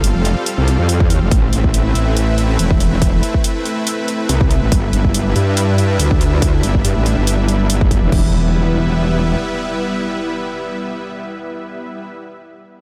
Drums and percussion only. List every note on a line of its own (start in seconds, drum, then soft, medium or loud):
0.04 closed hi-hat medium
0.25 closed hi-hat soft
0.46 closed hi-hat medium
0.68 closed hi-hat soft
0.89 closed hi-hat medium
1.00 kick loud
1.10 closed hi-hat medium
1.31 kick loud
1.31 closed hi-hat medium
1.53 closed hi-hat soft
1.64 kick medium
1.74 closed hi-hat medium
1.95 closed hi-hat soft
2.17 closed hi-hat medium
2.38 closed hi-hat soft
2.59 closed hi-hat medium
2.71 kick loud
2.80 closed hi-hat soft
3.02 kick loud
3.02 closed hi-hat medium
3.23 closed hi-hat soft
3.34 kick medium
3.44 closed hi-hat medium
3.65 closed hi-hat soft
3.87 closed hi-hat medium
4.08 closed hi-hat soft
4.29 closed hi-hat medium
4.41 kick loud
4.51 closed hi-hat soft
4.72 kick loud
4.72 closed hi-hat medium
4.93 closed hi-hat soft
5.05 kick medium
5.14 closed hi-hat medium
5.36 closed hi-hat soft
5.57 closed hi-hat medium
5.78 closed hi-hat soft
6.00 closed hi-hat medium
6.11 kick medium
6.21 closed hi-hat soft
6.42 kick loud
6.42 closed hi-hat medium
6.63 closed hi-hat soft
6.75 kick medium
6.85 closed hi-hat medium
7.06 closed hi-hat soft
7.27 closed hi-hat medium
7.48 closed hi-hat soft
7.70 closed hi-hat medium
7.81 kick loud
7.91 kick medium
7.91 closed hi-hat soft
8.12 kick loud
8.12 crash medium